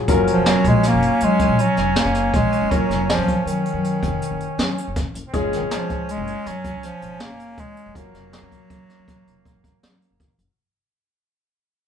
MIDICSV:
0, 0, Header, 1, 6, 480
1, 0, Start_track
1, 0, Key_signature, 6, "major"
1, 0, Tempo, 374532
1, 103, Time_signature, 7, 2, 24, 8
1, 15215, End_track
2, 0, Start_track
2, 0, Title_t, "Grand piano"
2, 0, Program_c, 0, 0
2, 103, Note_on_c, 0, 61, 67
2, 105, Note_on_c, 0, 54, 74
2, 113, Note_on_c, 0, 65, 65
2, 113, Note_on_c, 0, 70, 75
2, 3426, Note_off_c, 0, 61, 0
2, 3427, Note_off_c, 0, 54, 0
2, 3431, Note_off_c, 0, 65, 0
2, 3431, Note_off_c, 0, 70, 0
2, 3482, Note_on_c, 0, 65, 61
2, 3486, Note_on_c, 0, 58, 60
2, 3488, Note_on_c, 0, 61, 55
2, 3490, Note_on_c, 0, 70, 63
2, 6789, Note_off_c, 0, 65, 0
2, 6791, Note_off_c, 0, 58, 0
2, 6792, Note_off_c, 0, 61, 0
2, 6793, Note_off_c, 0, 70, 0
2, 6836, Note_on_c, 0, 56, 77
2, 6838, Note_on_c, 0, 65, 68
2, 6841, Note_on_c, 0, 68, 72
2, 6847, Note_on_c, 0, 73, 79
2, 10138, Note_off_c, 0, 56, 0
2, 10139, Note_off_c, 0, 65, 0
2, 10140, Note_off_c, 0, 68, 0
2, 10143, Note_off_c, 0, 73, 0
2, 10182, Note_on_c, 0, 54, 64
2, 10183, Note_on_c, 0, 65, 54
2, 10187, Note_on_c, 0, 61, 57
2, 10188, Note_on_c, 0, 70, 63
2, 13488, Note_off_c, 0, 54, 0
2, 13489, Note_off_c, 0, 65, 0
2, 13491, Note_off_c, 0, 61, 0
2, 13491, Note_off_c, 0, 70, 0
2, 15215, End_track
3, 0, Start_track
3, 0, Title_t, "Flugelhorn"
3, 0, Program_c, 1, 56
3, 106, Note_on_c, 1, 61, 101
3, 6443, Note_off_c, 1, 61, 0
3, 6752, Note_on_c, 1, 60, 71
3, 6848, Note_on_c, 1, 61, 101
3, 6867, Note_off_c, 1, 60, 0
3, 10194, Note_on_c, 1, 58, 80
3, 10214, Note_off_c, 1, 61, 0
3, 13306, Note_off_c, 1, 58, 0
3, 15215, End_track
4, 0, Start_track
4, 0, Title_t, "Bass clarinet"
4, 0, Program_c, 2, 71
4, 387, Note_on_c, 2, 53, 87
4, 623, Note_on_c, 2, 54, 92
4, 642, Note_off_c, 2, 53, 0
4, 876, Note_on_c, 2, 56, 87
4, 896, Note_off_c, 2, 54, 0
4, 1115, Note_on_c, 2, 58, 97
4, 1134, Note_off_c, 2, 56, 0
4, 1585, Note_on_c, 2, 56, 87
4, 1604, Note_off_c, 2, 58, 0
4, 2066, Note_on_c, 2, 54, 85
4, 2086, Note_off_c, 2, 56, 0
4, 2551, Note_on_c, 2, 58, 94
4, 2570, Note_off_c, 2, 54, 0
4, 3012, Note_on_c, 2, 56, 88
4, 3031, Note_off_c, 2, 58, 0
4, 3476, Note_on_c, 2, 54, 94
4, 3495, Note_off_c, 2, 56, 0
4, 3957, Note_off_c, 2, 54, 0
4, 3974, Note_on_c, 2, 53, 92
4, 4448, Note_on_c, 2, 51, 76
4, 4468, Note_off_c, 2, 53, 0
4, 6363, Note_off_c, 2, 51, 0
4, 7118, Note_on_c, 2, 51, 76
4, 7217, Note_off_c, 2, 51, 0
4, 7359, Note_on_c, 2, 53, 85
4, 7831, Note_on_c, 2, 56, 94
4, 7850, Note_off_c, 2, 53, 0
4, 8304, Note_on_c, 2, 54, 93
4, 8323, Note_off_c, 2, 56, 0
4, 8772, Note_on_c, 2, 53, 88
4, 8791, Note_off_c, 2, 54, 0
4, 9242, Note_on_c, 2, 58, 98
4, 9261, Note_off_c, 2, 53, 0
4, 9728, Note_on_c, 2, 56, 99
4, 9748, Note_off_c, 2, 58, 0
4, 10199, Note_off_c, 2, 56, 0
4, 10207, Note_on_c, 2, 54, 91
4, 13021, Note_off_c, 2, 54, 0
4, 15215, End_track
5, 0, Start_track
5, 0, Title_t, "Upright bass"
5, 0, Program_c, 3, 32
5, 104, Note_on_c, 3, 30, 89
5, 404, Note_off_c, 3, 30, 0
5, 476, Note_on_c, 3, 29, 72
5, 671, Note_off_c, 3, 29, 0
5, 825, Note_on_c, 3, 34, 99
5, 1187, Note_on_c, 3, 30, 78
5, 1207, Note_off_c, 3, 34, 0
5, 1388, Note_off_c, 3, 30, 0
5, 1559, Note_on_c, 3, 42, 89
5, 1855, Note_off_c, 3, 42, 0
5, 1904, Note_on_c, 3, 34, 89
5, 2107, Note_off_c, 3, 34, 0
5, 2275, Note_on_c, 3, 29, 81
5, 2574, Note_off_c, 3, 29, 0
5, 2630, Note_on_c, 3, 30, 82
5, 2932, Note_off_c, 3, 30, 0
5, 2990, Note_on_c, 3, 34, 81
5, 3192, Note_off_c, 3, 34, 0
5, 3346, Note_on_c, 3, 30, 89
5, 3550, Note_off_c, 3, 30, 0
5, 3710, Note_on_c, 3, 29, 85
5, 4012, Note_off_c, 3, 29, 0
5, 4069, Note_on_c, 3, 42, 89
5, 4272, Note_off_c, 3, 42, 0
5, 4429, Note_on_c, 3, 42, 78
5, 4632, Note_off_c, 3, 42, 0
5, 4786, Note_on_c, 3, 42, 84
5, 5090, Note_off_c, 3, 42, 0
5, 5159, Note_on_c, 3, 29, 85
5, 5358, Note_off_c, 3, 29, 0
5, 5519, Note_on_c, 3, 30, 82
5, 5718, Note_off_c, 3, 30, 0
5, 5869, Note_on_c, 3, 42, 76
5, 6072, Note_off_c, 3, 42, 0
5, 6248, Note_on_c, 3, 30, 78
5, 6443, Note_off_c, 3, 30, 0
5, 6591, Note_on_c, 3, 30, 85
5, 6693, Note_off_c, 3, 30, 0
5, 6842, Note_on_c, 3, 30, 87
5, 7139, Note_off_c, 3, 30, 0
5, 7186, Note_on_c, 3, 32, 78
5, 7390, Note_off_c, 3, 32, 0
5, 7563, Note_on_c, 3, 37, 94
5, 7905, Note_on_c, 3, 30, 94
5, 7924, Note_off_c, 3, 37, 0
5, 8108, Note_off_c, 3, 30, 0
5, 8281, Note_on_c, 3, 42, 99
5, 8576, Note_off_c, 3, 42, 0
5, 8632, Note_on_c, 3, 37, 90
5, 8831, Note_off_c, 3, 37, 0
5, 8999, Note_on_c, 3, 32, 87
5, 9295, Note_off_c, 3, 32, 0
5, 9349, Note_on_c, 3, 30, 76
5, 9648, Note_off_c, 3, 30, 0
5, 9709, Note_on_c, 3, 37, 87
5, 9909, Note_off_c, 3, 37, 0
5, 10074, Note_on_c, 3, 30, 88
5, 10172, Note_off_c, 3, 30, 0
5, 10195, Note_on_c, 3, 30, 92
5, 10392, Note_off_c, 3, 30, 0
5, 10431, Note_on_c, 3, 29, 83
5, 10728, Note_off_c, 3, 29, 0
5, 10792, Note_on_c, 3, 42, 97
5, 10989, Note_off_c, 3, 42, 0
5, 11148, Note_on_c, 3, 42, 79
5, 11347, Note_off_c, 3, 42, 0
5, 11521, Note_on_c, 3, 42, 71
5, 11813, Note_off_c, 3, 42, 0
5, 11882, Note_on_c, 3, 29, 86
5, 12074, Note_off_c, 3, 29, 0
5, 12239, Note_on_c, 3, 30, 78
5, 12432, Note_off_c, 3, 30, 0
5, 12601, Note_on_c, 3, 42, 81
5, 12793, Note_off_c, 3, 42, 0
5, 12952, Note_on_c, 3, 30, 70
5, 13148, Note_off_c, 3, 30, 0
5, 13309, Note_on_c, 3, 30, 81
5, 13406, Note_off_c, 3, 30, 0
5, 15215, End_track
6, 0, Start_track
6, 0, Title_t, "Drums"
6, 103, Note_on_c, 9, 42, 69
6, 104, Note_on_c, 9, 36, 88
6, 231, Note_off_c, 9, 42, 0
6, 232, Note_off_c, 9, 36, 0
6, 350, Note_on_c, 9, 42, 58
6, 478, Note_off_c, 9, 42, 0
6, 589, Note_on_c, 9, 38, 98
6, 589, Note_on_c, 9, 42, 83
6, 717, Note_off_c, 9, 38, 0
6, 717, Note_off_c, 9, 42, 0
6, 826, Note_on_c, 9, 36, 62
6, 828, Note_on_c, 9, 42, 53
6, 954, Note_off_c, 9, 36, 0
6, 956, Note_off_c, 9, 42, 0
6, 1067, Note_on_c, 9, 38, 33
6, 1067, Note_on_c, 9, 42, 82
6, 1195, Note_off_c, 9, 38, 0
6, 1195, Note_off_c, 9, 42, 0
6, 1312, Note_on_c, 9, 42, 64
6, 1440, Note_off_c, 9, 42, 0
6, 1543, Note_on_c, 9, 42, 74
6, 1671, Note_off_c, 9, 42, 0
6, 1787, Note_on_c, 9, 42, 58
6, 1788, Note_on_c, 9, 36, 69
6, 1915, Note_off_c, 9, 42, 0
6, 1916, Note_off_c, 9, 36, 0
6, 2032, Note_on_c, 9, 42, 83
6, 2160, Note_off_c, 9, 42, 0
6, 2268, Note_on_c, 9, 38, 32
6, 2268, Note_on_c, 9, 42, 62
6, 2396, Note_off_c, 9, 38, 0
6, 2396, Note_off_c, 9, 42, 0
6, 2512, Note_on_c, 9, 38, 93
6, 2512, Note_on_c, 9, 42, 78
6, 2640, Note_off_c, 9, 38, 0
6, 2640, Note_off_c, 9, 42, 0
6, 2748, Note_on_c, 9, 38, 32
6, 2748, Note_on_c, 9, 42, 57
6, 2877, Note_off_c, 9, 38, 0
6, 2877, Note_off_c, 9, 42, 0
6, 2992, Note_on_c, 9, 42, 68
6, 2994, Note_on_c, 9, 36, 95
6, 3121, Note_off_c, 9, 42, 0
6, 3122, Note_off_c, 9, 36, 0
6, 3236, Note_on_c, 9, 42, 53
6, 3364, Note_off_c, 9, 42, 0
6, 3477, Note_on_c, 9, 36, 94
6, 3477, Note_on_c, 9, 42, 71
6, 3606, Note_off_c, 9, 36, 0
6, 3606, Note_off_c, 9, 42, 0
6, 3725, Note_on_c, 9, 38, 33
6, 3725, Note_on_c, 9, 42, 59
6, 3854, Note_off_c, 9, 38, 0
6, 3854, Note_off_c, 9, 42, 0
6, 3966, Note_on_c, 9, 38, 110
6, 3966, Note_on_c, 9, 42, 74
6, 4094, Note_off_c, 9, 38, 0
6, 4094, Note_off_c, 9, 42, 0
6, 4202, Note_on_c, 9, 36, 60
6, 4205, Note_on_c, 9, 42, 50
6, 4330, Note_off_c, 9, 36, 0
6, 4333, Note_off_c, 9, 42, 0
6, 4448, Note_on_c, 9, 42, 79
6, 4577, Note_off_c, 9, 42, 0
6, 4685, Note_on_c, 9, 42, 60
6, 4813, Note_off_c, 9, 42, 0
6, 4926, Note_on_c, 9, 42, 65
6, 5054, Note_off_c, 9, 42, 0
6, 5161, Note_on_c, 9, 36, 73
6, 5164, Note_on_c, 9, 42, 60
6, 5289, Note_off_c, 9, 36, 0
6, 5292, Note_off_c, 9, 42, 0
6, 5405, Note_on_c, 9, 42, 88
6, 5533, Note_off_c, 9, 42, 0
6, 5643, Note_on_c, 9, 42, 58
6, 5772, Note_off_c, 9, 42, 0
6, 5881, Note_on_c, 9, 38, 95
6, 5881, Note_on_c, 9, 42, 78
6, 6009, Note_off_c, 9, 38, 0
6, 6009, Note_off_c, 9, 42, 0
6, 6125, Note_on_c, 9, 42, 59
6, 6253, Note_off_c, 9, 42, 0
6, 6356, Note_on_c, 9, 38, 32
6, 6356, Note_on_c, 9, 42, 80
6, 6359, Note_on_c, 9, 36, 100
6, 6484, Note_off_c, 9, 38, 0
6, 6484, Note_off_c, 9, 42, 0
6, 6487, Note_off_c, 9, 36, 0
6, 6602, Note_on_c, 9, 42, 63
6, 6730, Note_off_c, 9, 42, 0
6, 6836, Note_on_c, 9, 42, 67
6, 6839, Note_on_c, 9, 36, 90
6, 6964, Note_off_c, 9, 42, 0
6, 6968, Note_off_c, 9, 36, 0
6, 7085, Note_on_c, 9, 38, 34
6, 7085, Note_on_c, 9, 42, 60
6, 7213, Note_off_c, 9, 38, 0
6, 7213, Note_off_c, 9, 42, 0
6, 7319, Note_on_c, 9, 38, 94
6, 7319, Note_on_c, 9, 42, 75
6, 7447, Note_off_c, 9, 38, 0
6, 7447, Note_off_c, 9, 42, 0
6, 7559, Note_on_c, 9, 36, 59
6, 7559, Note_on_c, 9, 42, 51
6, 7687, Note_off_c, 9, 36, 0
6, 7687, Note_off_c, 9, 42, 0
6, 7800, Note_on_c, 9, 42, 74
6, 7928, Note_off_c, 9, 42, 0
6, 8040, Note_on_c, 9, 42, 55
6, 8168, Note_off_c, 9, 42, 0
6, 8281, Note_on_c, 9, 38, 30
6, 8281, Note_on_c, 9, 42, 70
6, 8409, Note_off_c, 9, 38, 0
6, 8409, Note_off_c, 9, 42, 0
6, 8514, Note_on_c, 9, 36, 74
6, 8515, Note_on_c, 9, 42, 54
6, 8642, Note_off_c, 9, 36, 0
6, 8643, Note_off_c, 9, 42, 0
6, 8753, Note_on_c, 9, 38, 33
6, 8753, Note_on_c, 9, 42, 77
6, 8881, Note_off_c, 9, 38, 0
6, 8881, Note_off_c, 9, 42, 0
6, 8996, Note_on_c, 9, 42, 61
6, 9124, Note_off_c, 9, 42, 0
6, 9227, Note_on_c, 9, 38, 98
6, 9227, Note_on_c, 9, 42, 74
6, 9355, Note_off_c, 9, 38, 0
6, 9355, Note_off_c, 9, 42, 0
6, 9477, Note_on_c, 9, 42, 59
6, 9605, Note_off_c, 9, 42, 0
6, 9711, Note_on_c, 9, 42, 77
6, 9712, Note_on_c, 9, 36, 100
6, 9839, Note_off_c, 9, 42, 0
6, 9840, Note_off_c, 9, 36, 0
6, 9954, Note_on_c, 9, 42, 56
6, 10082, Note_off_c, 9, 42, 0
6, 10193, Note_on_c, 9, 36, 94
6, 10195, Note_on_c, 9, 42, 77
6, 10322, Note_off_c, 9, 36, 0
6, 10323, Note_off_c, 9, 42, 0
6, 10439, Note_on_c, 9, 38, 36
6, 10439, Note_on_c, 9, 42, 64
6, 10567, Note_off_c, 9, 38, 0
6, 10567, Note_off_c, 9, 42, 0
6, 10676, Note_on_c, 9, 38, 101
6, 10676, Note_on_c, 9, 42, 84
6, 10804, Note_off_c, 9, 38, 0
6, 10804, Note_off_c, 9, 42, 0
6, 10912, Note_on_c, 9, 36, 62
6, 10916, Note_on_c, 9, 42, 56
6, 11040, Note_off_c, 9, 36, 0
6, 11044, Note_off_c, 9, 42, 0
6, 11152, Note_on_c, 9, 36, 100
6, 11152, Note_on_c, 9, 42, 82
6, 11280, Note_off_c, 9, 36, 0
6, 11280, Note_off_c, 9, 42, 0
6, 11401, Note_on_c, 9, 38, 33
6, 11401, Note_on_c, 9, 42, 57
6, 11529, Note_off_c, 9, 38, 0
6, 11529, Note_off_c, 9, 42, 0
6, 11634, Note_on_c, 9, 36, 89
6, 11638, Note_on_c, 9, 38, 29
6, 11638, Note_on_c, 9, 42, 72
6, 11763, Note_off_c, 9, 36, 0
6, 11766, Note_off_c, 9, 38, 0
6, 11766, Note_off_c, 9, 42, 0
6, 11885, Note_on_c, 9, 42, 55
6, 12013, Note_off_c, 9, 42, 0
6, 12116, Note_on_c, 9, 36, 93
6, 12122, Note_on_c, 9, 42, 73
6, 12244, Note_off_c, 9, 36, 0
6, 12250, Note_off_c, 9, 42, 0
6, 12355, Note_on_c, 9, 36, 72
6, 12358, Note_on_c, 9, 42, 57
6, 12483, Note_off_c, 9, 36, 0
6, 12486, Note_off_c, 9, 42, 0
6, 12600, Note_on_c, 9, 38, 100
6, 12600, Note_on_c, 9, 42, 76
6, 12729, Note_off_c, 9, 38, 0
6, 12729, Note_off_c, 9, 42, 0
6, 12841, Note_on_c, 9, 42, 53
6, 12969, Note_off_c, 9, 42, 0
6, 13072, Note_on_c, 9, 36, 90
6, 13073, Note_on_c, 9, 42, 72
6, 13200, Note_off_c, 9, 36, 0
6, 13202, Note_off_c, 9, 42, 0
6, 13310, Note_on_c, 9, 42, 55
6, 13438, Note_off_c, 9, 42, 0
6, 15215, End_track
0, 0, End_of_file